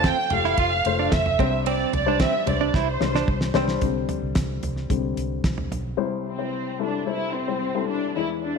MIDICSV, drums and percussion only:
0, 0, Header, 1, 2, 480
1, 0, Start_track
1, 0, Key_signature, 0, "major"
1, 0, Tempo, 541028
1, 1473, Time_signature, 4, 2, 24, 8
1, 7613, End_track
2, 0, Start_track
2, 0, Title_t, "Drums"
2, 33, Note_on_c, 9, 51, 66
2, 35, Note_on_c, 9, 36, 100
2, 35, Note_on_c, 9, 38, 115
2, 122, Note_off_c, 9, 51, 0
2, 124, Note_off_c, 9, 36, 0
2, 124, Note_off_c, 9, 38, 0
2, 267, Note_on_c, 9, 51, 63
2, 271, Note_on_c, 9, 43, 60
2, 355, Note_off_c, 9, 51, 0
2, 359, Note_off_c, 9, 43, 0
2, 392, Note_on_c, 9, 38, 37
2, 481, Note_off_c, 9, 38, 0
2, 509, Note_on_c, 9, 51, 68
2, 512, Note_on_c, 9, 36, 98
2, 598, Note_off_c, 9, 51, 0
2, 601, Note_off_c, 9, 36, 0
2, 752, Note_on_c, 9, 51, 73
2, 840, Note_off_c, 9, 51, 0
2, 992, Note_on_c, 9, 38, 104
2, 994, Note_on_c, 9, 36, 104
2, 995, Note_on_c, 9, 51, 61
2, 1081, Note_off_c, 9, 38, 0
2, 1083, Note_off_c, 9, 36, 0
2, 1084, Note_off_c, 9, 51, 0
2, 1117, Note_on_c, 9, 43, 62
2, 1206, Note_off_c, 9, 43, 0
2, 1234, Note_on_c, 9, 36, 99
2, 1241, Note_on_c, 9, 51, 50
2, 1323, Note_off_c, 9, 36, 0
2, 1330, Note_off_c, 9, 51, 0
2, 1473, Note_on_c, 9, 51, 75
2, 1562, Note_off_c, 9, 51, 0
2, 1715, Note_on_c, 9, 43, 58
2, 1715, Note_on_c, 9, 51, 55
2, 1804, Note_off_c, 9, 43, 0
2, 1804, Note_off_c, 9, 51, 0
2, 1948, Note_on_c, 9, 51, 66
2, 1950, Note_on_c, 9, 38, 121
2, 1952, Note_on_c, 9, 36, 96
2, 2036, Note_off_c, 9, 51, 0
2, 2039, Note_off_c, 9, 38, 0
2, 2041, Note_off_c, 9, 36, 0
2, 2190, Note_on_c, 9, 51, 64
2, 2194, Note_on_c, 9, 43, 60
2, 2279, Note_off_c, 9, 51, 0
2, 2283, Note_off_c, 9, 43, 0
2, 2431, Note_on_c, 9, 36, 103
2, 2432, Note_on_c, 9, 38, 60
2, 2520, Note_off_c, 9, 36, 0
2, 2521, Note_off_c, 9, 38, 0
2, 2669, Note_on_c, 9, 38, 70
2, 2757, Note_off_c, 9, 38, 0
2, 2794, Note_on_c, 9, 38, 66
2, 2882, Note_off_c, 9, 38, 0
2, 2910, Note_on_c, 9, 36, 101
2, 2998, Note_off_c, 9, 36, 0
2, 3024, Note_on_c, 9, 38, 74
2, 3113, Note_off_c, 9, 38, 0
2, 3141, Note_on_c, 9, 38, 97
2, 3229, Note_off_c, 9, 38, 0
2, 3263, Note_on_c, 9, 38, 83
2, 3351, Note_off_c, 9, 38, 0
2, 3384, Note_on_c, 9, 42, 77
2, 3388, Note_on_c, 9, 36, 95
2, 3473, Note_off_c, 9, 42, 0
2, 3477, Note_off_c, 9, 36, 0
2, 3626, Note_on_c, 9, 42, 61
2, 3626, Note_on_c, 9, 43, 51
2, 3715, Note_off_c, 9, 42, 0
2, 3715, Note_off_c, 9, 43, 0
2, 3861, Note_on_c, 9, 42, 70
2, 3863, Note_on_c, 9, 38, 102
2, 3868, Note_on_c, 9, 36, 101
2, 3950, Note_off_c, 9, 42, 0
2, 3952, Note_off_c, 9, 38, 0
2, 3957, Note_off_c, 9, 36, 0
2, 4106, Note_on_c, 9, 42, 65
2, 4110, Note_on_c, 9, 43, 54
2, 4195, Note_off_c, 9, 42, 0
2, 4199, Note_off_c, 9, 43, 0
2, 4227, Note_on_c, 9, 38, 31
2, 4316, Note_off_c, 9, 38, 0
2, 4348, Note_on_c, 9, 36, 94
2, 4349, Note_on_c, 9, 42, 68
2, 4437, Note_off_c, 9, 36, 0
2, 4438, Note_off_c, 9, 42, 0
2, 4590, Note_on_c, 9, 42, 80
2, 4679, Note_off_c, 9, 42, 0
2, 4827, Note_on_c, 9, 38, 93
2, 4828, Note_on_c, 9, 36, 99
2, 4830, Note_on_c, 9, 42, 69
2, 4915, Note_off_c, 9, 38, 0
2, 4916, Note_off_c, 9, 36, 0
2, 4919, Note_off_c, 9, 42, 0
2, 4948, Note_on_c, 9, 43, 61
2, 5037, Note_off_c, 9, 43, 0
2, 5073, Note_on_c, 9, 43, 54
2, 5076, Note_on_c, 9, 42, 60
2, 5162, Note_off_c, 9, 43, 0
2, 5165, Note_off_c, 9, 42, 0
2, 7613, End_track
0, 0, End_of_file